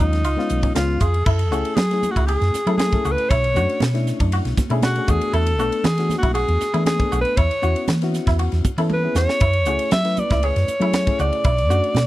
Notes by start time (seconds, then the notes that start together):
0.00 D#2 F#3 G#3 C#4 D#4 F4
0.13 snare, ride
0.24 C#2 F4, hi-hat pedal, ride
0.37 G#3 B3 C#4 F4, snare
0.49 B1, hi-hat pedal, ride
0.63 C#4, kick, ride
0.75 C#2 G#3 B3 C#4 F4, snare, hi-hat pedal, ride
1.00 F2 F4 G#4, kick, hi-hat pedal, ride
1.13 C#4 F4, ride
1.25 F#2 E4 A4, kick, crash, muted conga
1.39 ride
1.51 C#2 A3 C#4 E4 F#4 G#4, hi-hat pedal
1.65 ride
1.76 F#3 G#4, snare, ride, high conga
1.91 A3 C#4 E4 G#4, snare, ride
2.03 hi-hat pedal, muted conga, high conga
2.11 F#4
2.16 C#2 E4, kick, ride
2.27 G#4, ride, muted conga
2.41 F#2, snare, ride
2.52 muted fingered electric bass stroke, snare, hi-hat pedal, muted conga
2.66 F#3 A3 C#4 E4 A4, ride
2.77 G#4, snare, ride, high conga
2.92 A3 C#4 E4 A4, kick, ride
3.05 C#2 F#4, hi-hat pedal
3.12 B4
3.18 ride
3.29 B1 E4 C#5, kick, ride, muted conga
3.44 ride
3.54 F#2 A3 C#4 D4 F#4, hi-hat pedal
3.69 ride
3.80 B2 D4 F#4, snare, ride, high conga
3.94 A3 C#4 D4 E4, snare, ride
4.07 snare, hi-hat pedal, muted conga
4.20 F#2 D4, kick, ride
4.32 F#4, ride, muted conga
4.45 B1, snare, ride
4.57 kick, snare, hi-hat pedal, muted conga, high conga, low conga
4.70 B2 A3 C#4 D4 E4 G#4, ride
4.82 F#4, snare, ride, high conga
4.96 A3 C#4 D4 G#4, ride
5.08 E2 A3 B3 D4 F#4 G#4, kick, hi-hat pedal
5.21 ride
5.33 E2 E4 A4, ride, muted conga
5.46 ride
5.58 B1 A3 B3 D4 F#4 A4, hi-hat pedal
5.72 ride
5.84 E3 D4 G#4, snare, ride, high conga
5.98 A3 B3 D4 F#4, snare, ride
6.10 snare, hi-hat pedal, muted conga, high conga
6.18 F#4
6.23 B1 E4, kick, ride
6.34 F#4 G#4, ride, muted conga
6.48 E2, ride
6.61 snare, hi-hat pedal, muted conga
6.74 E3 A3 B3 D4 E4 G#4, ride
6.86 G#4, snare, ride, high conga
6.98 A3 B3 D4 A4, kick, ride
7.12 B1 F#4, hi-hat pedal
7.21 B4, ride
7.37 E2 E4 C#5, kick, ride, muted conga
7.51 ride
7.62 E2 B3 C#4 E4 F#4, hi-hat pedal
7.76 ride
7.88 E3, snare, ride, high conga
8.02 B3 C#4 E4 F#4, snare, ride
8.14 snare, hi-hat pedal, muted conga
8.27 E2 E4, kick, snare, ride
8.39 F#4, ride, muted conga
8.52 E2, snare, ride
8.64 kick, hi-hat pedal, muted conga, high conga, low conga
8.78 E3 B3 C#4 E4 A4, ride
8.90 B4, high tom, high conga
9.04 B3 C#4 E4 G#4
9.15 E2 F#4 C#5, snare, hi-hat pedal
9.29 snare
9.40 F#2 E4, kick, ride, muted conga
9.53 ride
9.65 C#2 A3 C#4 E4 F#4 G#4, hi-hat pedal
9.79 ride
9.91 F#3 E4 E5, snare, ride, high conga
10.04 A3 C#4 E4 B4, snare, ride
10.17 D5, hi-hat pedal, muted conga, high conga
10.30 C#2 E4, kick, snare, ride
10.43 G#4 C#5, ride, muted conga
10.56 F#2, snare, ride
10.68 muted fingered electric bass stroke, hi-hat pedal, muted conga
10.80 F#3 A3 C#4 E4 G#4, ride
10.93 snare, ride, high conga
11.06 A3 C#4 E4 G#4, kick, ride
11.19 C#2 F#4 D5, hi-hat pedal
11.33 ride
11.44 B1 E4, kick, ride, muted conga
11.58 ride
11.69 F#2 A3 C#4 D4 F#4, hi-hat pedal
11.84 ride
11.95 B2 D4, snare, ride, high conga